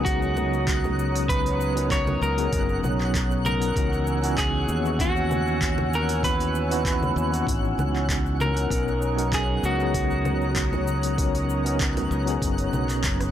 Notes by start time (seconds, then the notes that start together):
Already playing: C#2 F#3 B3 C#4 D#4 G#4 A#4 C#5 F#5 A#5 D#6 F#6
0.05 F#4, kick, open hi-hat, cabasa
0.22 cabasa
0.37 low conga, cabasa
0.53 cabasa
0.67 kick, clap, open hi-hat, cabasa
0.84 low conga, cabasa
0.99 cabasa
1.16 open hi-hat, cabasa
1.28 F#3 B3 C#4 D#4 B4, kick, open hi-hat, cabasa
1.46 open hi-hat, cabasa
1.61 cabasa
1.76 F#3 B3 C#4 D#4 A#4, open hi-hat, cabasa
1.91 C#5, kick, clap, open hi-hat, cabasa
2.07 low conga, cabasa
2.21 C#2 A#4, cabasa
2.37 F#3 B3 C#4 D#4 G#4, open hi-hat, cabasa
2.52 F#1, kick, open hi-hat, cabasa
2.69 cabasa
2.83 B1, low conga, cabasa
2.99 F#3 B3 C#4 D#4 C#5, clap, cabasa
3.14 kick, clap, open hi-hat, cabasa
3.31 cabasa
3.44 F#3 B3 C#4 D#4 A#4, low conga, cabasa
3.62 open hi-hat, cabasa
3.75 C#2 E3 B3 C#4 D#4 F#4 C#5 F#5 G#5 E6, kick, open hi-hat, cabasa
3.93 cabasa
4.07 cabasa
4.22 E3 B3 C#4 D#4 F#4, open hi-hat, cabasa
4.38 G#4, kick, clap, open hi-hat, cabasa
4.68 D#2, cabasa
4.83 B3 C#4 D#4 E4, cabasa
4.87 F#4
4.99 F#4, kick, open hi-hat, cabasa
5.17 cabasa
5.31 low conga, cabasa
5.47 cabasa
5.61 kick, clap, open hi-hat, cabasa
5.78 low conga, cabasa
5.93 A#4, cabasa
6.09 open hi-hat, cabasa
6.23 B3 C#4 D#4 E4 F#4 B4, kick, open hi-hat, cabasa
6.40 open hi-hat, cabasa
6.55 cabasa
6.70 B3 C#4 D#4 E4 F#4, open hi-hat, cabasa
6.85 kick, clap, open hi-hat, cabasa
7.03 low conga, cabasa
7.16 D#2, cabasa
7.30 E3 B3 C#4 D#4, open hi-hat, cabasa
7.34 F#4
7.47 G#1, kick, open hi-hat, cabasa
7.64 cabasa
7.78 C#2, low conga, cabasa
7.96 clap, cabasa
8.09 kick, clap, open hi-hat, cabasa
8.26 cabasa
8.40 A#4, low conga, cabasa
8.57 open hi-hat, cabasa
8.69 B1 F#3 B3 C#4 D#4 A#4 C#5 A#5 D#6, kick, open hi-hat, cabasa
8.88 cabasa
9.02 cabasa
9.16 F#3 B3 C#4 D#4 A#4, open hi-hat, cabasa
9.32 G#4, kick, clap, open hi-hat, cabasa
9.63 C#2 F#4, cabasa
9.78 F#3 B3 C#4 D#4, cabasa
9.82 G#4
9.94 kick, open hi-hat, cabasa
10.11 cabasa
10.25 low conga, cabasa
10.42 cabasa
10.56 kick, clap, open hi-hat, cabasa
10.73 low conga, cabasa
10.87 cabasa
11.03 open hi-hat, cabasa
11.17 F#3 B3 C#4 D#4 A#4, kick, open hi-hat, cabasa
11.35 open hi-hat, cabasa
11.49 cabasa
11.64 F#3 B3 C#4 D#4 A#4, open hi-hat, cabasa
11.80 kick, clap, open hi-hat, cabasa
11.97 open hi-hat, low conga, cabasa
12.11 C#2, cabasa
12.25 F#3 B3 C#4 D#4, open hi-hat, cabasa
12.30 G#4
12.42 F#1, kick, open hi-hat, cabasa
12.58 open hi-hat, cabasa
12.73 B1, low conga, cabasa
12.89 clap, open hi-hat, cabasa
13.04 F#1, kick, clap, open hi-hat, cabasa
13.21 cross-stick, open hi-hat, cabasa